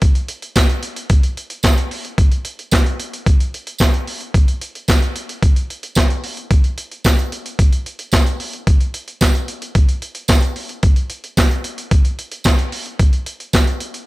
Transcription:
0.02 kick, closed hi-hat
0.15 closed hi-hat
0.28 closed hi-hat
0.42 closed hi-hat
0.56 kick, snare, clap, closed hi-hat, tambourine
0.69 closed hi-hat
0.83 closed hi-hat
0.96 closed hi-hat
1.10 kick, closed hi-hat
1.23 closed hi-hat
1.37 closed hi-hat
1.50 closed hi-hat
1.63 kick, snare, clap, closed hi-hat, tambourine
1.78 closed hi-hat
1.91 open hi-hat
2.05 closed hi-hat
2.18 kick, closed hi-hat
2.32 closed hi-hat
2.45 closed hi-hat
2.59 closed hi-hat
2.71 kick, snare, clap, closed hi-hat, tambourine
2.86 closed hi-hat
3.00 closed hi-hat
3.13 closed hi-hat
3.26 kick, closed hi-hat
3.40 closed hi-hat
3.54 closed hi-hat
3.67 closed hi-hat
3.78 kick, snare, clap, closed hi-hat, tambourine
3.94 closed hi-hat
4.07 open hi-hat
4.21 closed hi-hat
4.34 kick, closed hi-hat
4.48 closed hi-hat
4.61 closed hi-hat
4.75 closed hi-hat
4.88 kick, snare, clap, closed hi-hat, tambourine
5.02 closed hi-hat
5.16 closed hi-hat
5.29 closed hi-hat
5.43 kick, closed hi-hat
5.56 closed hi-hat
5.70 closed hi-hat
5.83 closed hi-hat
5.95 kick, snare, clap, closed hi-hat, tambourine
6.10 closed hi-hat
6.24 open hi-hat
6.37 closed hi-hat
6.51 kick, closed hi-hat
6.64 closed hi-hat
6.78 closed hi-hat
6.91 closed hi-hat
7.04 kick, snare, clap, closed hi-hat, tambourine
7.19 closed hi-hat
7.32 closed hi-hat
7.46 closed hi-hat
7.59 kick, closed hi-hat
7.72 closed hi-hat
7.86 closed hi-hat
7.99 closed hi-hat
8.12 kick, snare, clap, closed hi-hat, tambourine
8.26 closed hi-hat
8.40 open hi-hat
8.53 closed hi-hat
8.67 kick, closed hi-hat
8.80 closed hi-hat
8.94 closed hi-hat
9.08 closed hi-hat
9.21 kick, snare, clap, closed hi-hat, tambourine
9.35 closed hi-hat
9.48 closed hi-hat
9.62 closed hi-hat
9.75 kick, closed hi-hat
9.89 closed hi-hat
10.02 closed hi-hat
10.15 closed hi-hat
10.28 kick, snare, clap, closed hi-hat, tambourine
10.42 closed hi-hat
10.56 open hi-hat
10.69 closed hi-hat
10.83 kick, closed hi-hat
10.96 closed hi-hat
11.10 closed hi-hat
11.24 closed hi-hat
11.37 kick, snare, clap, closed hi-hat, tambourine
11.51 closed hi-hat
11.64 closed hi-hat
11.78 closed hi-hat
11.91 kick, closed hi-hat
12.05 closed hi-hat
12.19 closed hi-hat
12.32 closed hi-hat
12.44 kick, snare, clap, closed hi-hat, tambourine
12.59 closed hi-hat
12.72 open hi-hat
12.86 closed hi-hat
12.99 kick, closed hi-hat
13.13 closed hi-hat
13.26 closed hi-hat
13.40 closed hi-hat
13.53 kick, snare, clap, closed hi-hat, tambourine
13.67 closed hi-hat
13.80 closed hi-hat
13.94 closed hi-hat

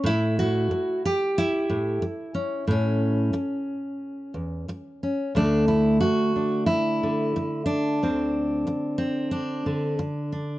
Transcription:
0.04 A2 E4
0.39 F#4
0.71 muted steel-string acoustic guitar stroke
1.05 G4
1.38 E4
1.69 A2
2.02 muted steel-string acoustic guitar stroke
2.35 C#4
2.67 A2 C#4
3.33 muted steel-string acoustic guitar stroke
4.34 E2
4.68 muted steel-string acoustic guitar stroke
5.03 C#4
5.35 D2 D3 A3 D4
5.68 E4
6.00 F#4, muted steel-string acoustic guitar stroke
6.36 D4
6.66 E4
7.03 D3
7.36 muted steel-string acoustic guitar stroke
7.66 D4
8.03 D2 C4
8.67 muted steel-string acoustic guitar stroke
8.98 C4
9.31 D4
9.66 D3
9.99 muted steel-string acoustic guitar stroke
10.32 D4

